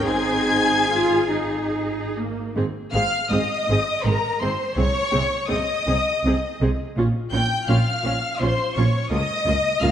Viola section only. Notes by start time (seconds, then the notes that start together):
0.06 C4 D#4
0.88 F4
1.31 D#4
2.16 A#3
2.56 C4 G#4
2.94 C4 G#4
3.32 C4 G#4
3.70 C4 G#4
4.05 C4 G#4
4.42 C4 G#4
4.76 C4 G#4
5.12 C4 G#4
5.48 C4 G#4
5.87 C4 G#4
6.25 C4 G#4
6.62 C4 G#4
6.98 C#4 F4
7.33 C#4 F4
7.68 C#4 F4
8.05 C#4 F4
8.41 C#4 F4
8.77 C#4 F4
9.11 A#3 F4
9.45 A#3 F4
9.82 A#3 F4